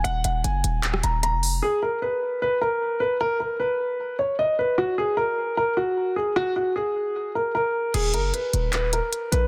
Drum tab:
CC |----------------|----------------|----------------|----------------|
HH |x-x-x-x-x-x-x-o-|----------------|----------------|----------------|
CP |--------x-------|----------------|----------------|----------------|
SD |---------r------|----------------|----------------|----------------|

CC |----------------|x---------------|
HH |----------------|x-x-x-x-x-x-x-x-|
CP |----------------|--------x-------|
SD |----------------|----------------|